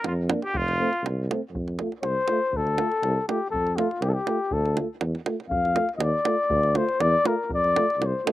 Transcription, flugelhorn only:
0.05 F4
0.42 G4
0.54 F4
2.03 C5
2.57 A4
3.28 G4
3.51 A4
3.77 F4
4.02 G4
4.09 A4
4.14 G4
4.53 A4
5.50 F5
5.97 D#5
6.03 D5
6.77 C5
7.01 D5
7.27 A#4
7.54 D5
8.06 C5

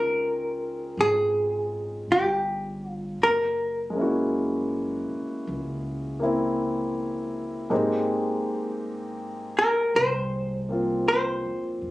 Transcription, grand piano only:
Already playing: G#3 C4 C#4 D#4 F4
3.90 G#3 A#3
3.96 C#4 E4
4.01 F#4
6.20 A#3 C4 E4
7.70 G#3 A#3 C4 D#4 G4
10.69 A#3 C4 F4

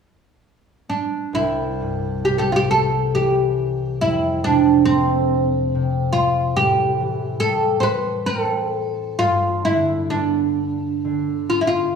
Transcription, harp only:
1.33 C2
1.81 G2
2.25 C3
3.15 E3
4.01 F2
4.46 C3
4.89 A3
5.75 C3
6.58 A2
7.00 E3
7.41 G3
8.29 C4
9.21 G2
9.67 D3
10.15 B3
11.05 D3

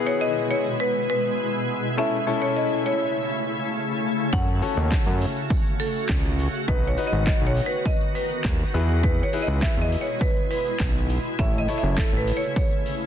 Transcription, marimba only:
0.07 C#5
0.21 D#5
0.51 C#5
0.80 B4
1.10 B4
1.98 E5
2.42 C#5
2.57 D#5
2.86 C#5
4.33 F#5
5.80 A4
6.68 B4
6.87 C#5
7.07 D#5
7.27 D#5
7.47 C#5
7.66 B4
7.86 D#5
8.15 B4
9.03 B4
9.23 C#5
9.42 D#5
9.62 E5
9.82 D#5
10.01 C#5
10.21 B4
10.51 B4
11.39 E5
11.58 D#5
11.78 E5
11.98 A4
12.17 B4
12.37 C#5
12.56 C#5

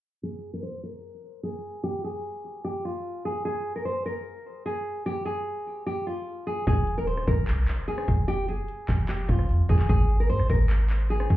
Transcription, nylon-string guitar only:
0.23 G#4
0.54 A#4
0.63 C5
0.83 A#4
1.43 G#4
1.84 G4
2.04 G#4
2.65 G4
2.85 F4
3.25 G#4
3.45 G#4
3.76 A#4
3.85 C5
4.06 A#4
4.66 G#4
5.06 G4
5.25 G#4
5.87 G4
6.07 F4
6.47 G#4
6.68 G#4
6.98 A#4
7.07 C5
7.28 A#4
7.88 G#4
8.28 G4
8.49 G#4
9.09 G4
9.29 F4
9.69 G#4
9.89 G#4
10.20 A#4
10.30 C5
10.50 A#4
11.10 G#4

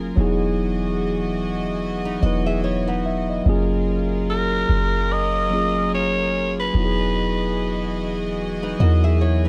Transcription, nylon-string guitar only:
2.05 D#4 B4
2.22 F#4 D#5
2.46 G#4 E5
2.64 E4 C#5
2.87 D#4 B4
8.63 D#4 B4
8.80 F#4 D#5
9.04 G#4 E5
9.21 E4 C#5
9.45 D#4 B4

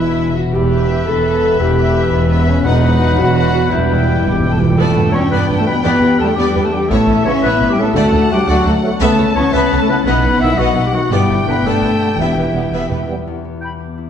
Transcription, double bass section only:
Already playing: E1
0.53 E1
1.07 E1
1.59 E1
2.11 E1
2.64 E1
3.17 E1
3.71 E1
4.24 E1
4.78 G2
4.95 G2
5.13 G2
5.31 G2
5.49 G2
5.84 E2
6.01 E2
6.19 E2
6.38 E2
6.55 E2
6.91 A1
7.08 A1
7.25 A1
7.43 A1
7.60 A1
7.95 D2
8.12 D2
8.31 D2
8.48 D2
8.66 D2
9.01 C#2
9.18 C#2
9.36 C#2
9.53 C#2
9.72 C#2
10.06 B1
10.23 B1
10.41 B1
10.57 B1
10.75 B1
11.10 G1
11.29 G1
11.47 G1
11.63 G1
11.82 G1
12.18 E1
12.36 E1
12.55 E1
12.72 E1
12.91 E1

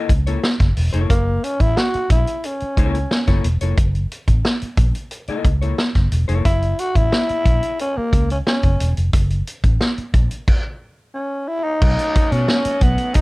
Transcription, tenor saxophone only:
1.10 A#3
1.44 C#4
1.61 E4
1.77 F#4
2.12 E4
2.46 C#4
6.45 E4
6.80 F#4
6.96 E4
7.81 C#4
7.97 A#3
8.31 C#4
8.48 C#4
11.15 C#4
11.48 E4
11.64 D#4
12.32 C#4
12.82 B3
13.15 D#4

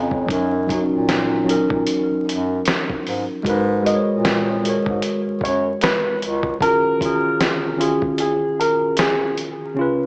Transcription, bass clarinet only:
Already playing: F2
0.29 F#2
0.92 A#2
1.71 A#2
2.10 F#2
2.27 F#2
3.05 G#2
3.45 G#2
4.08 A#2
4.87 G#2
5.26 F#2
5.41 F#2
6.21 C#2

